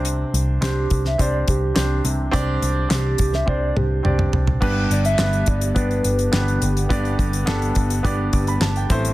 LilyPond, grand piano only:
<<
  \new Staff \with { instrumentName = "Grand piano" } { \time 4/4 \key g \major \tempo 4 = 105 << { r1 | r1 | r1 | r2 r8 d'''16 b''16 a''16 g''8 r16 | } \\ { <c' d' g' c''>4 <c' d' g' c''>4 <c' d' g' c''>4 <c' d' g' c''>4 | <c' d' g' d''>4 <c' d' g' c''>4 <c' d' g' c''>4 <c' d' g' d''>4 | <b d' g' b'>4 <b d' g' b'>4 <b d' g' d''>4 <b d' g' b'>4 | <b d' g' d''>4 <b d' g' a'>4 <b d' g' d''>4 r8 <c' e' a' c''>8 | } >> }
  \new Staff \with { instrumentName = "Grand piano" } { \clef bass \time 4/4 \key g \major c4 r2 r8 c8~ | c4 r2. | g,4. r2 r8 | g,4. r2 a,8 | }
>>